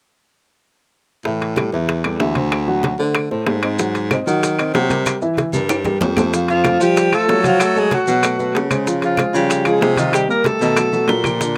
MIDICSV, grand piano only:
0, 0, Header, 1, 2, 480
1, 0, Start_track
1, 0, Tempo, 317125
1, 1897, Time_signature, 4, 2, 24, 8
1, 17521, End_track
2, 0, Start_track
2, 0, Title_t, "Grand piano"
2, 0, Program_c, 0, 0
2, 1903, Note_on_c, 0, 52, 63
2, 1903, Note_on_c, 0, 64, 59
2, 1909, Note_on_c, 0, 76, 62
2, 2294, Note_off_c, 0, 52, 0
2, 2294, Note_off_c, 0, 64, 0
2, 2298, Note_off_c, 0, 76, 0
2, 2369, Note_on_c, 0, 55, 56
2, 2376, Note_on_c, 0, 67, 52
2, 2380, Note_on_c, 0, 69, 55
2, 2569, Note_off_c, 0, 55, 0
2, 2573, Note_off_c, 0, 67, 0
2, 2576, Note_off_c, 0, 69, 0
2, 2620, Note_on_c, 0, 52, 68
2, 2626, Note_on_c, 0, 64, 69
2, 2633, Note_on_c, 0, 76, 69
2, 3013, Note_off_c, 0, 52, 0
2, 3016, Note_off_c, 0, 64, 0
2, 3021, Note_off_c, 0, 76, 0
2, 3104, Note_on_c, 0, 55, 60
2, 3107, Note_on_c, 0, 69, 63
2, 3108, Note_on_c, 0, 67, 62
2, 3298, Note_off_c, 0, 55, 0
2, 3300, Note_off_c, 0, 69, 0
2, 3301, Note_off_c, 0, 67, 0
2, 3333, Note_on_c, 0, 52, 62
2, 3338, Note_on_c, 0, 64, 61
2, 3341, Note_on_c, 0, 76, 68
2, 3532, Note_off_c, 0, 52, 0
2, 3535, Note_off_c, 0, 64, 0
2, 3537, Note_off_c, 0, 76, 0
2, 3567, Note_on_c, 0, 57, 59
2, 3571, Note_on_c, 0, 69, 61
2, 3582, Note_on_c, 0, 72, 65
2, 3966, Note_off_c, 0, 57, 0
2, 3968, Note_off_c, 0, 69, 0
2, 3975, Note_off_c, 0, 72, 0
2, 4051, Note_on_c, 0, 54, 69
2, 4055, Note_on_c, 0, 66, 69
2, 4058, Note_on_c, 0, 78, 69
2, 4448, Note_off_c, 0, 54, 0
2, 4450, Note_off_c, 0, 66, 0
2, 4452, Note_off_c, 0, 78, 0
2, 4527, Note_on_c, 0, 69, 62
2, 4532, Note_on_c, 0, 57, 57
2, 4537, Note_on_c, 0, 72, 58
2, 4926, Note_off_c, 0, 69, 0
2, 4929, Note_off_c, 0, 57, 0
2, 4932, Note_off_c, 0, 72, 0
2, 5007, Note_on_c, 0, 57, 62
2, 5008, Note_on_c, 0, 69, 62
2, 5008, Note_on_c, 0, 72, 66
2, 5406, Note_off_c, 0, 57, 0
2, 5407, Note_off_c, 0, 69, 0
2, 5407, Note_off_c, 0, 72, 0
2, 5484, Note_on_c, 0, 60, 64
2, 5493, Note_on_c, 0, 72, 64
2, 5495, Note_on_c, 0, 75, 64
2, 5688, Note_off_c, 0, 60, 0
2, 5693, Note_off_c, 0, 72, 0
2, 5695, Note_off_c, 0, 75, 0
2, 5734, Note_on_c, 0, 54, 65
2, 5742, Note_on_c, 0, 66, 64
2, 5748, Note_on_c, 0, 78, 68
2, 6131, Note_off_c, 0, 54, 0
2, 6136, Note_off_c, 0, 66, 0
2, 6139, Note_off_c, 0, 78, 0
2, 6236, Note_on_c, 0, 60, 57
2, 6239, Note_on_c, 0, 72, 60
2, 6248, Note_on_c, 0, 75, 59
2, 6427, Note_off_c, 0, 60, 0
2, 6429, Note_off_c, 0, 72, 0
2, 6434, Note_off_c, 0, 75, 0
2, 6463, Note_on_c, 0, 54, 71
2, 6466, Note_on_c, 0, 66, 67
2, 6469, Note_on_c, 0, 78, 71
2, 6857, Note_off_c, 0, 54, 0
2, 6858, Note_off_c, 0, 66, 0
2, 6860, Note_off_c, 0, 78, 0
2, 6942, Note_on_c, 0, 60, 64
2, 6945, Note_on_c, 0, 72, 58
2, 6949, Note_on_c, 0, 75, 60
2, 7139, Note_off_c, 0, 60, 0
2, 7141, Note_off_c, 0, 72, 0
2, 7143, Note_off_c, 0, 75, 0
2, 7185, Note_on_c, 0, 54, 69
2, 7185, Note_on_c, 0, 66, 62
2, 7189, Note_on_c, 0, 78, 68
2, 7381, Note_off_c, 0, 54, 0
2, 7381, Note_off_c, 0, 66, 0
2, 7383, Note_off_c, 0, 78, 0
2, 7407, Note_on_c, 0, 55, 67
2, 7413, Note_on_c, 0, 67, 62
2, 7418, Note_on_c, 0, 70, 65
2, 7807, Note_off_c, 0, 55, 0
2, 7811, Note_off_c, 0, 67, 0
2, 7814, Note_off_c, 0, 70, 0
2, 7901, Note_on_c, 0, 64, 70
2, 7904, Note_on_c, 0, 52, 71
2, 7911, Note_on_c, 0, 76, 75
2, 8296, Note_off_c, 0, 64, 0
2, 8298, Note_off_c, 0, 52, 0
2, 8302, Note_off_c, 0, 76, 0
2, 8381, Note_on_c, 0, 55, 63
2, 8381, Note_on_c, 0, 67, 60
2, 8384, Note_on_c, 0, 70, 58
2, 8776, Note_off_c, 0, 55, 0
2, 8776, Note_off_c, 0, 67, 0
2, 8778, Note_off_c, 0, 70, 0
2, 8857, Note_on_c, 0, 55, 60
2, 8857, Note_on_c, 0, 67, 62
2, 8865, Note_on_c, 0, 70, 61
2, 9254, Note_off_c, 0, 55, 0
2, 9254, Note_off_c, 0, 67, 0
2, 9258, Note_off_c, 0, 70, 0
2, 9347, Note_on_c, 0, 57, 61
2, 9350, Note_on_c, 0, 69, 64
2, 9354, Note_on_c, 0, 72, 68
2, 9543, Note_off_c, 0, 57, 0
2, 9545, Note_off_c, 0, 69, 0
2, 9547, Note_off_c, 0, 72, 0
2, 9588, Note_on_c, 0, 53, 61
2, 9588, Note_on_c, 0, 65, 67
2, 9595, Note_on_c, 0, 77, 65
2, 9980, Note_off_c, 0, 53, 0
2, 9980, Note_off_c, 0, 65, 0
2, 9985, Note_off_c, 0, 77, 0
2, 10057, Note_on_c, 0, 57, 57
2, 10061, Note_on_c, 0, 69, 57
2, 10071, Note_on_c, 0, 72, 60
2, 10257, Note_off_c, 0, 57, 0
2, 10259, Note_off_c, 0, 69, 0
2, 10265, Note_off_c, 0, 72, 0
2, 10300, Note_on_c, 0, 53, 66
2, 10307, Note_on_c, 0, 65, 75
2, 10311, Note_on_c, 0, 77, 69
2, 10696, Note_off_c, 0, 53, 0
2, 10700, Note_off_c, 0, 65, 0
2, 10702, Note_off_c, 0, 77, 0
2, 10780, Note_on_c, 0, 65, 70
2, 10781, Note_on_c, 0, 53, 73
2, 10790, Note_on_c, 0, 77, 73
2, 11176, Note_off_c, 0, 53, 0
2, 11176, Note_off_c, 0, 65, 0
2, 11181, Note_off_c, 0, 77, 0
2, 11256, Note_on_c, 0, 54, 75
2, 11258, Note_on_c, 0, 66, 80
2, 11268, Note_on_c, 0, 78, 78
2, 11653, Note_off_c, 0, 54, 0
2, 11655, Note_off_c, 0, 66, 0
2, 11660, Note_off_c, 0, 78, 0
2, 11742, Note_on_c, 0, 57, 67
2, 11749, Note_on_c, 0, 69, 64
2, 11754, Note_on_c, 0, 73, 65
2, 12137, Note_off_c, 0, 57, 0
2, 12141, Note_off_c, 0, 69, 0
2, 12144, Note_off_c, 0, 73, 0
2, 12225, Note_on_c, 0, 54, 70
2, 12230, Note_on_c, 0, 66, 69
2, 12234, Note_on_c, 0, 78, 71
2, 12422, Note_off_c, 0, 54, 0
2, 12425, Note_off_c, 0, 66, 0
2, 12427, Note_off_c, 0, 78, 0
2, 12457, Note_on_c, 0, 57, 58
2, 12460, Note_on_c, 0, 69, 59
2, 12463, Note_on_c, 0, 71, 56
2, 12657, Note_off_c, 0, 57, 0
2, 12659, Note_off_c, 0, 69, 0
2, 12660, Note_off_c, 0, 71, 0
2, 12693, Note_on_c, 0, 57, 66
2, 12705, Note_on_c, 0, 69, 66
2, 12705, Note_on_c, 0, 71, 65
2, 13091, Note_off_c, 0, 57, 0
2, 13098, Note_off_c, 0, 69, 0
2, 13098, Note_off_c, 0, 71, 0
2, 13179, Note_on_c, 0, 56, 68
2, 13183, Note_on_c, 0, 72, 68
2, 13186, Note_on_c, 0, 68, 66
2, 13378, Note_off_c, 0, 56, 0
2, 13380, Note_off_c, 0, 72, 0
2, 13382, Note_off_c, 0, 68, 0
2, 13417, Note_on_c, 0, 53, 67
2, 13427, Note_on_c, 0, 65, 64
2, 13434, Note_on_c, 0, 77, 68
2, 13813, Note_off_c, 0, 53, 0
2, 13819, Note_off_c, 0, 65, 0
2, 13823, Note_off_c, 0, 77, 0
2, 13901, Note_on_c, 0, 56, 60
2, 13903, Note_on_c, 0, 68, 58
2, 13908, Note_on_c, 0, 72, 60
2, 14099, Note_off_c, 0, 56, 0
2, 14099, Note_off_c, 0, 68, 0
2, 14103, Note_off_c, 0, 72, 0
2, 14129, Note_on_c, 0, 53, 70
2, 14136, Note_on_c, 0, 65, 71
2, 14140, Note_on_c, 0, 77, 77
2, 14528, Note_off_c, 0, 53, 0
2, 14532, Note_off_c, 0, 65, 0
2, 14534, Note_off_c, 0, 77, 0
2, 14609, Note_on_c, 0, 53, 74
2, 14614, Note_on_c, 0, 77, 74
2, 14617, Note_on_c, 0, 65, 72
2, 15007, Note_off_c, 0, 53, 0
2, 15011, Note_off_c, 0, 77, 0
2, 15012, Note_off_c, 0, 65, 0
2, 15104, Note_on_c, 0, 51, 76
2, 15105, Note_on_c, 0, 63, 74
2, 15115, Note_on_c, 0, 75, 76
2, 15496, Note_off_c, 0, 51, 0
2, 15497, Note_off_c, 0, 63, 0
2, 15502, Note_off_c, 0, 75, 0
2, 15569, Note_on_c, 0, 55, 68
2, 15574, Note_on_c, 0, 67, 65
2, 15578, Note_on_c, 0, 70, 62
2, 15966, Note_off_c, 0, 55, 0
2, 15970, Note_off_c, 0, 67, 0
2, 15971, Note_off_c, 0, 70, 0
2, 16063, Note_on_c, 0, 51, 71
2, 16068, Note_on_c, 0, 63, 70
2, 16075, Note_on_c, 0, 75, 70
2, 16258, Note_off_c, 0, 51, 0
2, 16261, Note_off_c, 0, 63, 0
2, 16265, Note_off_c, 0, 75, 0
2, 16302, Note_on_c, 0, 54, 60
2, 16309, Note_on_c, 0, 66, 59
2, 16314, Note_on_c, 0, 69, 55
2, 16497, Note_off_c, 0, 54, 0
2, 16501, Note_off_c, 0, 66, 0
2, 16504, Note_off_c, 0, 69, 0
2, 16544, Note_on_c, 0, 54, 62
2, 16547, Note_on_c, 0, 66, 62
2, 16550, Note_on_c, 0, 69, 66
2, 16934, Note_off_c, 0, 54, 0
2, 16936, Note_off_c, 0, 66, 0
2, 16938, Note_off_c, 0, 69, 0
2, 17021, Note_on_c, 0, 65, 63
2, 17022, Note_on_c, 0, 53, 64
2, 17024, Note_on_c, 0, 67, 64
2, 17215, Note_off_c, 0, 65, 0
2, 17216, Note_off_c, 0, 53, 0
2, 17217, Note_off_c, 0, 67, 0
2, 17267, Note_on_c, 0, 50, 70
2, 17273, Note_on_c, 0, 62, 65
2, 17279, Note_on_c, 0, 74, 67
2, 17521, Note_off_c, 0, 50, 0
2, 17521, Note_off_c, 0, 62, 0
2, 17521, Note_off_c, 0, 74, 0
2, 17521, End_track
0, 0, End_of_file